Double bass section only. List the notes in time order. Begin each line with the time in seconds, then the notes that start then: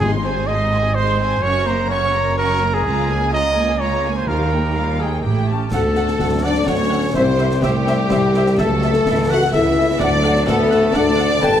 0.00 G#1
1.42 F#1
2.84 C#2
4.28 D#2
5.24 A1
5.72 D2
6.21 D2
6.69 D2
7.16 C2
7.64 C2
8.11 C2
8.59 C#2
9.06 C#2
9.54 C#2
10.01 D2
10.47 D2
10.94 D2
11.43 G1